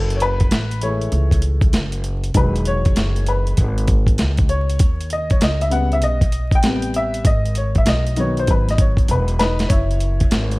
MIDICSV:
0, 0, Header, 1, 4, 480
1, 0, Start_track
1, 0, Tempo, 612245
1, 1845, Time_signature, 4, 2, 24, 8
1, 8303, End_track
2, 0, Start_track
2, 0, Title_t, "Upright piano"
2, 0, Program_c, 0, 0
2, 0, Note_on_c, 0, 69, 79
2, 125, Note_on_c, 0, 73, 68
2, 138, Note_off_c, 0, 69, 0
2, 164, Note_off_c, 0, 73, 0
2, 172, Note_on_c, 0, 71, 103
2, 640, Note_on_c, 0, 52, 53
2, 647, Note_on_c, 0, 56, 45
2, 650, Note_on_c, 0, 73, 91
2, 651, Note_on_c, 0, 57, 60
2, 663, Note_off_c, 0, 71, 0
2, 1096, Note_off_c, 0, 73, 0
2, 1331, Note_off_c, 0, 52, 0
2, 1334, Note_off_c, 0, 56, 0
2, 1337, Note_off_c, 0, 57, 0
2, 1839, Note_on_c, 0, 51, 55
2, 1844, Note_on_c, 0, 54, 49
2, 1849, Note_on_c, 0, 56, 57
2, 1858, Note_on_c, 0, 71, 89
2, 2095, Note_on_c, 0, 73, 105
2, 2098, Note_off_c, 0, 71, 0
2, 2575, Note_on_c, 0, 71, 82
2, 2584, Note_off_c, 0, 73, 0
2, 3019, Note_off_c, 0, 71, 0
2, 3522, Note_on_c, 0, 73, 98
2, 3731, Note_off_c, 0, 51, 0
2, 3733, Note_off_c, 0, 54, 0
2, 3736, Note_off_c, 0, 56, 0
2, 3972, Note_off_c, 0, 73, 0
2, 4020, Note_on_c, 0, 75, 89
2, 4165, Note_on_c, 0, 73, 80
2, 4172, Note_off_c, 0, 75, 0
2, 4242, Note_off_c, 0, 73, 0
2, 4259, Note_on_c, 0, 75, 88
2, 4396, Note_off_c, 0, 75, 0
2, 4404, Note_on_c, 0, 76, 85
2, 4467, Note_on_c, 0, 49, 53
2, 4471, Note_on_c, 0, 55, 49
2, 4479, Note_on_c, 0, 59, 66
2, 4486, Note_on_c, 0, 78, 93
2, 4489, Note_off_c, 0, 76, 0
2, 4645, Note_off_c, 0, 78, 0
2, 4650, Note_on_c, 0, 76, 93
2, 4732, Note_off_c, 0, 76, 0
2, 4733, Note_on_c, 0, 75, 100
2, 4821, Note_off_c, 0, 49, 0
2, 4823, Note_off_c, 0, 55, 0
2, 4827, Note_off_c, 0, 59, 0
2, 5136, Note_off_c, 0, 75, 0
2, 5136, Note_on_c, 0, 79, 102
2, 5201, Note_on_c, 0, 48, 58
2, 5207, Note_on_c, 0, 55, 50
2, 5213, Note_on_c, 0, 59, 69
2, 5459, Note_on_c, 0, 76, 101
2, 5463, Note_off_c, 0, 79, 0
2, 5659, Note_off_c, 0, 48, 0
2, 5662, Note_off_c, 0, 55, 0
2, 5665, Note_off_c, 0, 59, 0
2, 5696, Note_on_c, 0, 75, 94
2, 5699, Note_off_c, 0, 76, 0
2, 5914, Note_off_c, 0, 75, 0
2, 5937, Note_on_c, 0, 73, 87
2, 6091, Note_off_c, 0, 73, 0
2, 6099, Note_on_c, 0, 76, 82
2, 6177, Note_off_c, 0, 76, 0
2, 6180, Note_on_c, 0, 75, 93
2, 6404, Note_on_c, 0, 51, 60
2, 6412, Note_on_c, 0, 54, 52
2, 6414, Note_on_c, 0, 59, 64
2, 6420, Note_off_c, 0, 75, 0
2, 6426, Note_on_c, 0, 73, 89
2, 6575, Note_off_c, 0, 73, 0
2, 6581, Note_on_c, 0, 72, 85
2, 6657, Note_off_c, 0, 72, 0
2, 6668, Note_on_c, 0, 71, 87
2, 6816, Note_off_c, 0, 71, 0
2, 6824, Note_on_c, 0, 75, 85
2, 6899, Note_off_c, 0, 75, 0
2, 6902, Note_on_c, 0, 73, 84
2, 7141, Note_off_c, 0, 73, 0
2, 7143, Note_on_c, 0, 71, 83
2, 7353, Note_off_c, 0, 71, 0
2, 7365, Note_on_c, 0, 71, 104
2, 7378, Note_on_c, 0, 63, 77
2, 7573, Note_off_c, 0, 51, 0
2, 7577, Note_off_c, 0, 54, 0
2, 7578, Note_off_c, 0, 59, 0
2, 7588, Note_off_c, 0, 71, 0
2, 7594, Note_on_c, 0, 73, 95
2, 7595, Note_off_c, 0, 63, 0
2, 7618, Note_on_c, 0, 64, 79
2, 8288, Note_off_c, 0, 73, 0
2, 8300, Note_off_c, 0, 64, 0
2, 8303, End_track
3, 0, Start_track
3, 0, Title_t, "Upright bass"
3, 0, Program_c, 1, 32
3, 0, Note_on_c, 1, 30, 80
3, 380, Note_off_c, 1, 30, 0
3, 402, Note_on_c, 1, 33, 91
3, 859, Note_off_c, 1, 33, 0
3, 880, Note_on_c, 1, 37, 96
3, 1338, Note_off_c, 1, 37, 0
3, 1358, Note_on_c, 1, 30, 97
3, 1817, Note_off_c, 1, 30, 0
3, 1843, Note_on_c, 1, 28, 94
3, 2300, Note_off_c, 1, 28, 0
3, 2330, Note_on_c, 1, 30, 89
3, 2783, Note_off_c, 1, 30, 0
3, 2805, Note_on_c, 1, 32, 106
3, 3261, Note_off_c, 1, 32, 0
3, 3288, Note_on_c, 1, 37, 101
3, 3742, Note_off_c, 1, 37, 0
3, 3764, Note_on_c, 1, 39, 93
3, 4220, Note_off_c, 1, 39, 0
3, 4249, Note_on_c, 1, 37, 102
3, 4720, Note_off_c, 1, 37, 0
3, 4720, Note_on_c, 1, 35, 102
3, 5202, Note_off_c, 1, 35, 0
3, 5202, Note_on_c, 1, 33, 105
3, 5660, Note_off_c, 1, 33, 0
3, 5684, Note_on_c, 1, 32, 103
3, 6141, Note_off_c, 1, 32, 0
3, 6159, Note_on_c, 1, 35, 97
3, 6618, Note_off_c, 1, 35, 0
3, 6649, Note_on_c, 1, 32, 81
3, 7103, Note_off_c, 1, 32, 0
3, 7126, Note_on_c, 1, 28, 99
3, 7581, Note_off_c, 1, 28, 0
3, 7609, Note_on_c, 1, 30, 97
3, 8063, Note_off_c, 1, 30, 0
3, 8089, Note_on_c, 1, 32, 85
3, 8303, Note_off_c, 1, 32, 0
3, 8303, End_track
4, 0, Start_track
4, 0, Title_t, "Drums"
4, 82, Note_on_c, 9, 42, 50
4, 159, Note_off_c, 9, 42, 0
4, 159, Note_on_c, 9, 42, 66
4, 238, Note_off_c, 9, 42, 0
4, 314, Note_on_c, 9, 42, 43
4, 320, Note_on_c, 9, 36, 77
4, 392, Note_off_c, 9, 42, 0
4, 398, Note_off_c, 9, 36, 0
4, 401, Note_on_c, 9, 42, 101
4, 408, Note_on_c, 9, 38, 107
4, 479, Note_off_c, 9, 42, 0
4, 487, Note_off_c, 9, 38, 0
4, 560, Note_on_c, 9, 42, 46
4, 638, Note_off_c, 9, 42, 0
4, 639, Note_on_c, 9, 42, 61
4, 717, Note_off_c, 9, 42, 0
4, 795, Note_on_c, 9, 42, 41
4, 874, Note_off_c, 9, 42, 0
4, 877, Note_on_c, 9, 42, 67
4, 955, Note_off_c, 9, 42, 0
4, 1030, Note_on_c, 9, 36, 81
4, 1036, Note_on_c, 9, 42, 57
4, 1108, Note_off_c, 9, 36, 0
4, 1113, Note_off_c, 9, 42, 0
4, 1113, Note_on_c, 9, 42, 66
4, 1191, Note_off_c, 9, 42, 0
4, 1265, Note_on_c, 9, 36, 99
4, 1271, Note_on_c, 9, 42, 46
4, 1344, Note_off_c, 9, 36, 0
4, 1349, Note_off_c, 9, 42, 0
4, 1356, Note_on_c, 9, 42, 87
4, 1364, Note_on_c, 9, 38, 110
4, 1435, Note_off_c, 9, 42, 0
4, 1443, Note_off_c, 9, 38, 0
4, 1507, Note_on_c, 9, 42, 51
4, 1585, Note_off_c, 9, 42, 0
4, 1598, Note_on_c, 9, 42, 67
4, 1677, Note_off_c, 9, 42, 0
4, 1753, Note_on_c, 9, 42, 47
4, 1832, Note_off_c, 9, 42, 0
4, 1838, Note_on_c, 9, 42, 100
4, 1840, Note_on_c, 9, 36, 99
4, 1916, Note_off_c, 9, 42, 0
4, 1918, Note_off_c, 9, 36, 0
4, 2004, Note_on_c, 9, 42, 51
4, 2081, Note_off_c, 9, 42, 0
4, 2081, Note_on_c, 9, 42, 68
4, 2159, Note_off_c, 9, 42, 0
4, 2235, Note_on_c, 9, 42, 44
4, 2241, Note_on_c, 9, 36, 84
4, 2314, Note_off_c, 9, 42, 0
4, 2319, Note_off_c, 9, 36, 0
4, 2320, Note_on_c, 9, 42, 98
4, 2327, Note_on_c, 9, 38, 102
4, 2398, Note_off_c, 9, 42, 0
4, 2406, Note_off_c, 9, 38, 0
4, 2478, Note_on_c, 9, 42, 50
4, 2557, Note_off_c, 9, 42, 0
4, 2559, Note_on_c, 9, 42, 59
4, 2637, Note_off_c, 9, 42, 0
4, 2719, Note_on_c, 9, 42, 42
4, 2797, Note_off_c, 9, 42, 0
4, 2800, Note_on_c, 9, 42, 73
4, 2805, Note_on_c, 9, 36, 78
4, 2878, Note_off_c, 9, 42, 0
4, 2883, Note_off_c, 9, 36, 0
4, 2962, Note_on_c, 9, 42, 65
4, 3038, Note_off_c, 9, 42, 0
4, 3038, Note_on_c, 9, 42, 68
4, 3042, Note_on_c, 9, 36, 92
4, 3116, Note_off_c, 9, 42, 0
4, 3120, Note_off_c, 9, 36, 0
4, 3188, Note_on_c, 9, 36, 93
4, 3197, Note_on_c, 9, 42, 44
4, 3266, Note_off_c, 9, 36, 0
4, 3275, Note_off_c, 9, 42, 0
4, 3277, Note_on_c, 9, 42, 89
4, 3285, Note_on_c, 9, 38, 103
4, 3356, Note_off_c, 9, 42, 0
4, 3364, Note_off_c, 9, 38, 0
4, 3429, Note_on_c, 9, 42, 48
4, 3438, Note_on_c, 9, 36, 85
4, 3508, Note_off_c, 9, 42, 0
4, 3516, Note_off_c, 9, 36, 0
4, 3520, Note_on_c, 9, 42, 67
4, 3599, Note_off_c, 9, 42, 0
4, 3680, Note_on_c, 9, 42, 52
4, 3757, Note_off_c, 9, 42, 0
4, 3757, Note_on_c, 9, 42, 104
4, 3762, Note_on_c, 9, 36, 104
4, 3836, Note_off_c, 9, 42, 0
4, 3840, Note_off_c, 9, 36, 0
4, 3924, Note_on_c, 9, 42, 51
4, 3999, Note_off_c, 9, 42, 0
4, 3999, Note_on_c, 9, 42, 62
4, 4078, Note_off_c, 9, 42, 0
4, 4154, Note_on_c, 9, 42, 43
4, 4161, Note_on_c, 9, 36, 85
4, 4233, Note_off_c, 9, 42, 0
4, 4239, Note_off_c, 9, 36, 0
4, 4241, Note_on_c, 9, 42, 99
4, 4248, Note_on_c, 9, 38, 104
4, 4319, Note_off_c, 9, 42, 0
4, 4327, Note_off_c, 9, 38, 0
4, 4401, Note_on_c, 9, 42, 50
4, 4480, Note_off_c, 9, 42, 0
4, 4481, Note_on_c, 9, 42, 61
4, 4559, Note_off_c, 9, 42, 0
4, 4640, Note_on_c, 9, 42, 42
4, 4718, Note_off_c, 9, 42, 0
4, 4718, Note_on_c, 9, 42, 70
4, 4796, Note_off_c, 9, 42, 0
4, 4871, Note_on_c, 9, 36, 84
4, 4874, Note_on_c, 9, 42, 66
4, 4950, Note_off_c, 9, 36, 0
4, 4953, Note_off_c, 9, 42, 0
4, 4957, Note_on_c, 9, 42, 67
4, 5035, Note_off_c, 9, 42, 0
4, 5107, Note_on_c, 9, 36, 91
4, 5115, Note_on_c, 9, 42, 43
4, 5185, Note_off_c, 9, 36, 0
4, 5193, Note_off_c, 9, 42, 0
4, 5195, Note_on_c, 9, 42, 92
4, 5203, Note_on_c, 9, 38, 118
4, 5273, Note_off_c, 9, 42, 0
4, 5281, Note_off_c, 9, 38, 0
4, 5349, Note_on_c, 9, 42, 49
4, 5427, Note_off_c, 9, 42, 0
4, 5441, Note_on_c, 9, 42, 72
4, 5520, Note_off_c, 9, 42, 0
4, 5597, Note_on_c, 9, 42, 52
4, 5676, Note_off_c, 9, 42, 0
4, 5681, Note_on_c, 9, 36, 106
4, 5682, Note_on_c, 9, 42, 103
4, 5760, Note_off_c, 9, 36, 0
4, 5760, Note_off_c, 9, 42, 0
4, 5845, Note_on_c, 9, 42, 57
4, 5920, Note_off_c, 9, 42, 0
4, 5920, Note_on_c, 9, 42, 69
4, 5999, Note_off_c, 9, 42, 0
4, 6076, Note_on_c, 9, 42, 46
4, 6081, Note_on_c, 9, 36, 84
4, 6154, Note_off_c, 9, 42, 0
4, 6160, Note_off_c, 9, 36, 0
4, 6161, Note_on_c, 9, 42, 101
4, 6168, Note_on_c, 9, 38, 113
4, 6239, Note_off_c, 9, 42, 0
4, 6247, Note_off_c, 9, 38, 0
4, 6324, Note_on_c, 9, 42, 53
4, 6400, Note_off_c, 9, 42, 0
4, 6400, Note_on_c, 9, 42, 61
4, 6479, Note_off_c, 9, 42, 0
4, 6563, Note_on_c, 9, 42, 44
4, 6641, Note_off_c, 9, 42, 0
4, 6643, Note_on_c, 9, 42, 71
4, 6647, Note_on_c, 9, 36, 85
4, 6721, Note_off_c, 9, 42, 0
4, 6725, Note_off_c, 9, 36, 0
4, 6809, Note_on_c, 9, 42, 62
4, 6812, Note_on_c, 9, 38, 36
4, 6885, Note_off_c, 9, 42, 0
4, 6885, Note_on_c, 9, 42, 72
4, 6886, Note_on_c, 9, 36, 96
4, 6891, Note_off_c, 9, 38, 0
4, 6963, Note_off_c, 9, 42, 0
4, 6964, Note_off_c, 9, 36, 0
4, 7032, Note_on_c, 9, 36, 91
4, 7043, Note_on_c, 9, 42, 47
4, 7110, Note_off_c, 9, 36, 0
4, 7121, Note_off_c, 9, 42, 0
4, 7122, Note_on_c, 9, 42, 91
4, 7200, Note_off_c, 9, 42, 0
4, 7275, Note_on_c, 9, 42, 49
4, 7354, Note_off_c, 9, 42, 0
4, 7366, Note_on_c, 9, 42, 69
4, 7375, Note_on_c, 9, 38, 91
4, 7444, Note_off_c, 9, 42, 0
4, 7453, Note_off_c, 9, 38, 0
4, 7521, Note_on_c, 9, 42, 55
4, 7527, Note_on_c, 9, 38, 87
4, 7599, Note_off_c, 9, 42, 0
4, 7604, Note_on_c, 9, 42, 99
4, 7605, Note_on_c, 9, 36, 104
4, 7606, Note_off_c, 9, 38, 0
4, 7682, Note_off_c, 9, 42, 0
4, 7684, Note_off_c, 9, 36, 0
4, 7767, Note_on_c, 9, 42, 50
4, 7843, Note_off_c, 9, 42, 0
4, 7843, Note_on_c, 9, 42, 63
4, 7922, Note_off_c, 9, 42, 0
4, 7998, Note_on_c, 9, 42, 44
4, 8004, Note_on_c, 9, 36, 82
4, 8077, Note_off_c, 9, 42, 0
4, 8083, Note_off_c, 9, 36, 0
4, 8083, Note_on_c, 9, 42, 95
4, 8090, Note_on_c, 9, 38, 107
4, 8161, Note_off_c, 9, 42, 0
4, 8168, Note_off_c, 9, 38, 0
4, 8243, Note_on_c, 9, 42, 48
4, 8303, Note_off_c, 9, 42, 0
4, 8303, End_track
0, 0, End_of_file